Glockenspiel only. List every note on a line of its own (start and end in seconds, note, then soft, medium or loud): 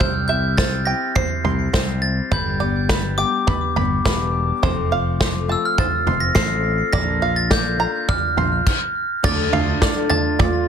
0.00 0.27 G6 medium
0.28 0.58 G6 medium
0.57 0.88 A6 medium
0.85 1.13 A#6 medium
1.16 2.05 C7 medium
2.02 2.32 A6 medium
2.33 2.86 G6 medium
3.18 4.29 D6 medium
5.52 5.65 E6 medium
5.65 5.79 F6 medium
5.79 6.19 A6 medium
6.20 6.36 A#6 medium
6.35 6.95 C7 medium
6.93 7.38 A#6 loud
7.36 7.51 A6 medium
7.52 8.11 G6 medium
8.09 8.62 F6 medium
9.25 10.07 A6 loud
10.10 10.68 A6 medium